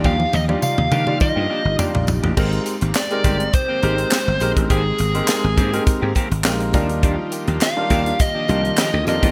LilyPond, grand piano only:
\new Staff \with { instrumentName = "Grand piano" } { \time 4/4 \key aes \lydian \tempo 4 = 103 << { r1 | r1 | r2. f''8 bes''8 | r1 | } \\ { r8. <g ees' f' d''>8 r8 <g ees' f' d''>8 r8. <g ees' f' d''>8 r8 | <aes c' ees' g' bes'>8 r8. <aes c' ees' g' bes'>8 r8. <aes c' ees' g' bes'>8 r8 <aes c' ees' g' bes'>8 | r8. <aes c' ees' g' bes'>8 r8 <aes c' ees' g' bes'>8 r8. <aes c' ees' g' bes'>8 <g d' ees' f' bes'>8~ | <g d' ees' f' bes'>4 r16 <g d' ees' f' bes'>8 r8. <g d' ees' f' bes'>8 r8 <g d' ees' f' bes'>8 | } >> }